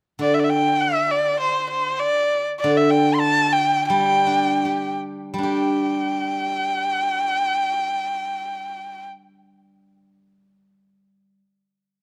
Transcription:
0.19 guzheng D3, erhu D5
0.34 erhu E5
0.39 erhu D5
0.44 erhu E5
0.50 erhu G5
0.81 erhu E5
1.11 erhu D5
1.40 erhu C5
1.70 erhu C5
1.99 erhu D5
2.59 erhu D5
2.64 guzheng D3
2.77 erhu E5
2.91 erhu G5
3.15 erhu C6
3.20 erhu A5
3.53 erhu G5
3.88 guzheng G3, erhu G5
4.27 guzheng D4
4.65 guzheng G4
5.34 guzheng G3
5.38 guzheng D4, erhu G5
5.43 guzheng G4

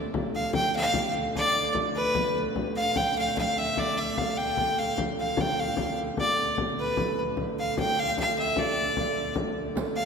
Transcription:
Already playing: hurdy-gurdy D3 A3
0.14 hurdy-gurdy D3 A3, frame drum
0.34 fiddle F5, frame drum
0.53 fiddle G5, frame drum
0.75 fiddle F5
0.94 frame drum
1.15 frame drum
1.35 fiddle D5, frame drum
1.55 frame drum
1.74 frame drum
1.95 fiddle B4
2.15 frame drum
2.36 frame drum
2.56 frame drum
2.76 fiddle F5, frame drum
2.96 fiddle G5, frame drum
3.18 fiddle F5
3.37 fiddle F5, frame drum
3.57 fiddle E5, frame drum
3.77 fiddle D5, frame drum
3.97 fiddle E5
4.17 fiddle F5, frame drum
4.37 fiddle G5, frame drum
4.57 frame drum
4.78 fiddle F5
4.97 hurdy-gurdy D3 A3, frame drum
5.18 fiddle F5, frame drum
5.37 fiddle G5, frame drum
5.59 fiddle F5
5.77 frame drum
5.98 frame drum
6.17 fiddle D5, frame drum
6.38 frame drum
6.58 frame drum
6.79 fiddle B4
6.97 frame drum
7.18 frame drum
7.37 frame drum
7.58 fiddle F5, frame drum
7.77 fiddle G5, frame drum
7.99 fiddle F5
8.17 fiddle F5, frame drum
8.39 fiddle E5
8.56 fiddle D5, frame drum
8.76 frame drum
8.97 frame drum
9.16 frame drum
9.35 frame drum
9.75 hurdy-gurdy D3 A3, riq, frame drum
9.96 fiddle F5, frame drum

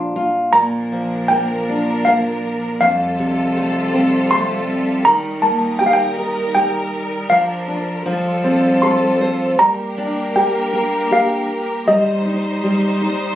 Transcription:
Already playing: nylon-string guitar A#2 F3 D4 F4, handbells C6
0.16 nylon-string guitar F4
0.53 nylon-string guitar A#2, string section F3 D4 A#4, handbells A#5
0.92 nylon-string guitar F3
1.28 nylon-string guitar A#3, handbells G5
1.69 nylon-string guitar D4
2.05 nylon-string guitar A#3, handbells F5
2.79 nylon-string guitar F2, string section G3 F4 A4, handbells F5
3.19 nylon-string guitar C3
3.57 nylon-string guitar A3
3.93 nylon-string guitar C4
4.31 nylon-string guitar A3, handbells C6
5.05 nylon-string guitar D#3, string section D#4 A#4, handbells A#5
5.42 nylon-string guitar A#3, handbells A5
5.79 nylon-string guitar G4, handbells G5
5.86 handbells F5
5.93 handbells G5
6.17 nylon-string guitar A#4
6.55 nylon-string guitar G4, handbells G5
7.30 nylon-string guitar F3, string section F3 D4, handbells F5
7.68 nylon-string guitar D4
8.06 nylon-string guitar F3, string section G3 F4 A4
8.44 nylon-string guitar C4
8.82 nylon-string guitar A4, handbells C6
9.21 nylon-string guitar C5
9.58 nylon-string guitar G3, string section A#3 G4 A#4, handbells A#5
9.98 nylon-string guitar D4
10.36 nylon-string guitar G4, handbells G5
10.73 nylon-string guitar A#4
11.11 nylon-string guitar G4, handbells F5
11.87 nylon-string guitar G3, string section G3 D#4 C5, handbells D#5
12.25 nylon-string guitar D#4
12.64 nylon-string guitar G3
13.01 nylon-string guitar D#4

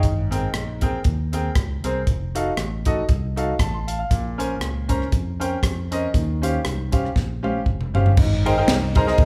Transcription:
0.03 fingered electric bass G#1, upright piano G#2, kick, closed hi-hat
0.31 upright piano C4 G#4 A#4 G5, closed hi-hat
0.53 fingered electric bass A#1, cross-stick, closed hi-hat
0.81 upright piano C4 G#4 A#4 G5, kick, closed hi-hat
1.04 fingered electric bass D#2, kick, closed hi-hat
1.33 upright piano C4 G#4 A#4 G5, closed hi-hat
1.55 fingered electric bass C#2, kick, cross-stick, closed hi-hat
1.83 fingered electric bass C2, upright piano C4 G#4 A#4 C5, closed hi-hat
2.07 fingered electric bass F1, kick, closed hi-hat
2.35 upright piano D#4 F#4 A4 F5, closed hi-hat
2.57 fingered electric bass A1, cross-stick, closed hi-hat
2.85 upright piano D#4 F#4 A4 D#5, kick, closed hi-hat
3.09 fingered electric bass C2, kick, closed hi-hat
3.36 upright piano D#4 F#4 A4 F5, closed hi-hat
3.59 fingered electric bass A1, upright piano A5, kick, cross-stick, closed hi-hat
3.74 upright piano C6
3.87 upright piano F5 A5, closed hi-hat
3.99 upright piano F5
4.10 fingered electric bass A#1, upright piano A#2, kick, closed hi-hat
4.38 upright piano C#4 A#4 C5 G#5, closed hi-hat
4.60 fingered electric bass C#2, cross-stick, closed hi-hat
4.89 upright piano C#4 A#4 C5 A#5, kick, closed hi-hat
5.02 cross-stick
5.12 fingered electric bass F2, kick, closed hi-hat
5.40 upright piano C#4 A#4 C5 G5, closed hi-hat
5.63 fingered electric bass F2, kick, cross-stick, closed hi-hat
5.91 upright piano C#4 A#4 C5 D#5, closed hi-hat
6.14 fingered electric bass D#2, upright piano D#3, kick, closed hi-hat
6.42 upright piano C#4 G4 C5 F5, closed hi-hat
6.65 fingered electric bass C2, cross-stick, closed hi-hat
6.92 upright piano C#4 G4 C5 F5, kick, cross-stick, closed hi-hat
7.05 cross-stick
7.16 fingered electric bass A#1, kick, snare
7.43 upright piano C#4 G4 C5 F5, high tom
7.66 fingered electric bass F1, kick
7.81 mid tom
7.94 fingered electric bass G1, upright piano C#4 G4 C5 F5, floor tom
8.06 floor tom
8.17 fingered electric bass G#1, upright piano G#2, kick, crash
8.45 upright piano D#4 G#4 A#4 C5 G5, ride
8.57 upright piano D#4 G#4 A#4 C5 G5
8.67 fingered electric bass C2, snare, ride
8.95 upright piano D#4 G#4 A#4 C5 A#5, kick, ride
9.07 upright piano D#4 G#4 A#4 C5 D#5, snare
9.18 fingered electric bass D#2, kick, ride

